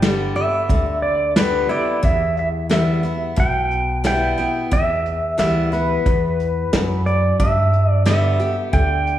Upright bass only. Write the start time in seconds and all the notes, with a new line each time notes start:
Already playing: G1
0.70 D2
2.03 E2
3.38 B1
4.72 E2
5.39 D2
6.06 E2
6.73 F#2
7.40 G2
8.73 D2